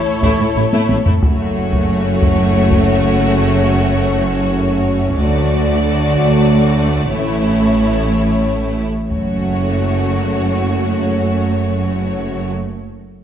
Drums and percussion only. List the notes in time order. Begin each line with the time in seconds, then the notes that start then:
0.23 taiko
0.73 taiko high
0.89 taiko high
1.06 taiko low
1.23 taiko
1.73 taiko
2.22 taiko
2.71 taiko
5.17 taiko
6.15 taiko
9.10 taiko